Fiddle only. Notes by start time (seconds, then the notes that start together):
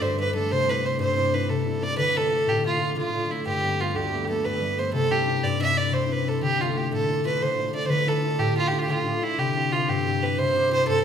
0.02 C5
0.20 B4
0.35 A4
0.52 C5
0.70 B4
0.86 C5
1.01 C5
1.34 B4
1.50 A4
1.83 D5
1.98 B4
2.17 A4
2.49 G4
2.66 F4
2.98 F4
3.31 E4
3.47 G4
3.81 F4
3.96 G4
4.30 A4
4.45 B4
4.79 C5
4.93 A4
5.12 G4
5.44 D5
5.62 E5
5.78 D5
5.94 C5
6.12 B4
6.28 A4
6.43 G4
6.61 F4
6.77 G4
6.94 A4
7.27 B4
7.43 C5
7.75 D5
7.86 C5
7.90 B4
8.08 A4
8.40 G4
8.58 F4
8.68 G4
8.79 F4 G4
8.89 F4
9.23 E4
9.39 G4
9.73 F4
9.89 G4
10.23 B4
10.39 C5
10.73 C5
10.88 A4